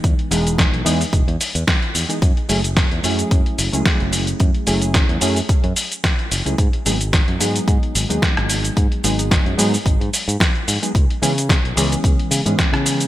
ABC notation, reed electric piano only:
X:1
M:4/4
L:1/16
Q:"Swing 16ths" 1/4=110
K:G#phr
V:1 name="Reed electric piano"
[E,G,B,DG]2 [E,G,B,DG]4 [E,G,B,DG] z8 [E,G,B,DG] | z2 [F,A,CEG] z3 [F,A,CEG]4- [F,A,CEG] [F,A,CEG]4- [F,A,CEG]- | [F,A,CEG]2 [F,A,CEG]4 [F,A,CEG] z8 [F,A,CEG] | z2 [F,G,B,DG] z3 [F,G,B,DG]4- [F,G,B,DG] [F,G,B,DG]4- [F,G,B,DG]- |
[F,G,B,DG]2 [F,G,B,DG]4 [F,G,B,DG] z8 [F,G,B,DG] | z2 [E,G,B,CG] z3 [E,G,B,CG]4- [E,G,B,CG] [E,G,B,CG]4- [E,G,B,CG] |]